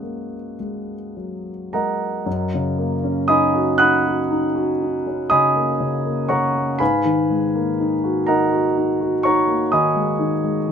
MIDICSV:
0, 0, Header, 1, 2, 480
1, 0, Start_track
1, 0, Key_signature, 6, "major"
1, 0, Tempo, 1142857
1, 724, Tempo, 1029160
1, 976, Time_signature, 9, 3, 24, 8
1, 2164, Tempo, 993377
1, 3604, Tempo, 958466
1, 5070, End_track
2, 0, Start_track
2, 0, Title_t, "Grand piano"
2, 0, Program_c, 0, 0
2, 0, Control_c, 0, 64, 127
2, 0, Note_on_c, 0, 42, 33
2, 0, Note_on_c, 0, 56, 29
2, 0, Note_on_c, 0, 58, 29
2, 0, Note_on_c, 0, 61, 31
2, 0, Note_on_c, 0, 66, 39
2, 0, Note_on_c, 0, 71, 41
2, 0, Note_on_c, 0, 75, 37
2, 0, Note_on_c, 0, 78, 49
2, 10, Note_off_c, 0, 58, 0
2, 10, Note_on_c, 0, 58, 26
2, 149, Note_off_c, 0, 56, 0
2, 230, Note_off_c, 0, 75, 0
2, 231, Note_off_c, 0, 66, 0
2, 231, Note_off_c, 0, 71, 0
2, 245, Note_off_c, 0, 78, 0
2, 251, Note_on_c, 0, 56, 26
2, 393, Note_off_c, 0, 58, 0
2, 490, Note_on_c, 0, 54, 24
2, 631, Note_off_c, 0, 56, 0
2, 727, Note_off_c, 0, 54, 0
2, 727, Note_on_c, 0, 82, 48
2, 731, Note_on_c, 0, 70, 42
2, 731, Note_on_c, 0, 78, 38
2, 732, Note_on_c, 0, 75, 38
2, 733, Note_on_c, 0, 56, 25
2, 958, Note_off_c, 0, 42, 0
2, 974, Note_on_c, 0, 42, 44
2, 980, Note_off_c, 0, 56, 0
2, 984, Control_c, 0, 64, 0
2, 988, Note_off_c, 0, 61, 0
2, 1070, Control_c, 0, 64, 127
2, 1105, Note_on_c, 0, 49, 32
2, 1219, Note_on_c, 0, 58, 38
2, 1290, Note_off_c, 0, 49, 0
2, 1336, Note_on_c, 0, 61, 36
2, 1406, Note_off_c, 0, 58, 0
2, 1436, Note_off_c, 0, 70, 0
2, 1436, Note_off_c, 0, 75, 0
2, 1436, Note_off_c, 0, 78, 0
2, 1449, Note_on_c, 0, 87, 71
2, 1452, Note_off_c, 0, 82, 0
2, 1452, Note_on_c, 0, 75, 54
2, 1454, Note_on_c, 0, 83, 56
2, 1455, Note_on_c, 0, 80, 50
2, 1456, Note_on_c, 0, 63, 41
2, 1523, Note_off_c, 0, 61, 0
2, 1571, Note_on_c, 0, 66, 42
2, 1643, Note_off_c, 0, 63, 0
2, 1672, Note_off_c, 0, 75, 0
2, 1673, Note_off_c, 0, 80, 0
2, 1673, Note_off_c, 0, 83, 0
2, 1682, Note_off_c, 0, 87, 0
2, 1683, Note_on_c, 0, 90, 74
2, 1688, Note_on_c, 0, 78, 58
2, 1689, Note_on_c, 0, 87, 59
2, 1691, Note_on_c, 0, 83, 59
2, 1693, Note_on_c, 0, 63, 37
2, 1760, Note_off_c, 0, 66, 0
2, 1814, Note_on_c, 0, 66, 38
2, 1881, Note_off_c, 0, 63, 0
2, 1930, Note_on_c, 0, 63, 45
2, 2001, Note_off_c, 0, 66, 0
2, 2043, Note_on_c, 0, 66, 39
2, 2118, Note_off_c, 0, 63, 0
2, 2165, Note_on_c, 0, 63, 36
2, 2235, Note_off_c, 0, 66, 0
2, 2286, Note_on_c, 0, 61, 33
2, 2358, Note_off_c, 0, 63, 0
2, 2386, Note_off_c, 0, 78, 0
2, 2386, Note_off_c, 0, 87, 0
2, 2387, Note_off_c, 0, 83, 0
2, 2399, Note_on_c, 0, 87, 76
2, 2402, Note_off_c, 0, 90, 0
2, 2402, Note_on_c, 0, 75, 55
2, 2404, Note_on_c, 0, 80, 54
2, 2405, Note_on_c, 0, 83, 54
2, 2407, Note_on_c, 0, 49, 33
2, 2478, Note_off_c, 0, 61, 0
2, 2524, Note_on_c, 0, 58, 35
2, 2597, Note_off_c, 0, 49, 0
2, 2642, Note_on_c, 0, 49, 39
2, 2714, Note_off_c, 0, 58, 0
2, 2765, Note_on_c, 0, 58, 36
2, 2834, Note_off_c, 0, 49, 0
2, 2862, Note_off_c, 0, 75, 0
2, 2863, Note_off_c, 0, 80, 0
2, 2863, Note_off_c, 0, 83, 0
2, 2876, Note_on_c, 0, 85, 60
2, 2879, Note_off_c, 0, 87, 0
2, 2879, Note_on_c, 0, 78, 56
2, 2881, Note_on_c, 0, 73, 50
2, 2881, Note_on_c, 0, 82, 53
2, 2885, Note_on_c, 0, 49, 36
2, 2956, Note_off_c, 0, 58, 0
2, 3007, Note_on_c, 0, 58, 34
2, 3077, Note_off_c, 0, 49, 0
2, 3104, Note_off_c, 0, 42, 0
2, 3106, Note_off_c, 0, 78, 0
2, 3107, Note_off_c, 0, 73, 0
2, 3107, Note_off_c, 0, 82, 0
2, 3118, Note_on_c, 0, 83, 67
2, 3121, Note_off_c, 0, 85, 0
2, 3123, Note_on_c, 0, 77, 52
2, 3124, Note_on_c, 0, 44, 38
2, 3124, Note_on_c, 0, 71, 51
2, 3125, Note_on_c, 0, 80, 50
2, 3126, Note_off_c, 0, 58, 0
2, 3134, Control_c, 0, 64, 0
2, 3222, Control_c, 0, 64, 127
2, 3246, Note_on_c, 0, 51, 35
2, 3368, Note_on_c, 0, 56, 33
2, 3438, Note_off_c, 0, 51, 0
2, 3487, Note_on_c, 0, 58, 36
2, 3558, Note_off_c, 0, 56, 0
2, 3608, Note_on_c, 0, 63, 38
2, 3678, Note_off_c, 0, 58, 0
2, 3728, Note_on_c, 0, 66, 40
2, 3799, Note_off_c, 0, 63, 0
2, 3824, Note_off_c, 0, 77, 0
2, 3825, Note_off_c, 0, 71, 0
2, 3826, Note_off_c, 0, 80, 0
2, 3841, Note_on_c, 0, 82, 65
2, 3842, Note_off_c, 0, 83, 0
2, 3848, Note_on_c, 0, 70, 49
2, 3849, Note_on_c, 0, 75, 50
2, 3850, Note_on_c, 0, 78, 49
2, 3851, Note_on_c, 0, 63, 38
2, 3918, Note_off_c, 0, 66, 0
2, 3970, Note_on_c, 0, 66, 38
2, 4038, Note_off_c, 0, 63, 0
2, 4096, Note_on_c, 0, 63, 40
2, 4157, Note_off_c, 0, 66, 0
2, 4214, Note_on_c, 0, 66, 39
2, 4280, Note_off_c, 0, 63, 0
2, 4303, Note_off_c, 0, 70, 0
2, 4303, Note_off_c, 0, 75, 0
2, 4304, Note_off_c, 0, 78, 0
2, 4319, Note_off_c, 0, 82, 0
2, 4326, Note_on_c, 0, 85, 71
2, 4335, Note_on_c, 0, 73, 53
2, 4335, Note_on_c, 0, 78, 45
2, 4335, Note_on_c, 0, 82, 53
2, 4337, Note_on_c, 0, 63, 36
2, 4400, Note_off_c, 0, 66, 0
2, 4447, Note_on_c, 0, 58, 37
2, 4523, Note_off_c, 0, 63, 0
2, 4554, Note_off_c, 0, 73, 0
2, 4554, Note_off_c, 0, 78, 0
2, 4554, Note_off_c, 0, 82, 0
2, 4566, Note_off_c, 0, 85, 0
2, 4568, Note_on_c, 0, 87, 64
2, 4572, Note_on_c, 0, 80, 48
2, 4573, Note_on_c, 0, 75, 50
2, 4573, Note_on_c, 0, 83, 48
2, 4574, Note_on_c, 0, 51, 39
2, 4638, Note_off_c, 0, 58, 0
2, 4689, Note_on_c, 0, 56, 35
2, 4762, Note_off_c, 0, 51, 0
2, 4807, Note_on_c, 0, 51, 37
2, 4879, Note_off_c, 0, 56, 0
2, 4930, Note_on_c, 0, 56, 34
2, 4997, Note_off_c, 0, 51, 0
2, 5051, Note_on_c, 0, 51, 37
2, 5070, Note_off_c, 0, 44, 0
2, 5070, Note_off_c, 0, 51, 0
2, 5070, Note_off_c, 0, 56, 0
2, 5070, Note_off_c, 0, 75, 0
2, 5070, Note_off_c, 0, 80, 0
2, 5070, Note_off_c, 0, 83, 0
2, 5070, Note_off_c, 0, 87, 0
2, 5070, End_track
0, 0, End_of_file